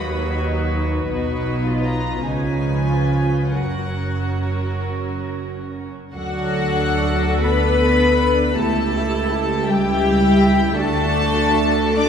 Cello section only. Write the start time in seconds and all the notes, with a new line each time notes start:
Already playing: D#2
1.09 B2
2.23 C#3
3.52 F#2
6.14 F#3
7.42 B3
8.56 A3
9.67 G3
10.76 A3
11.96 D4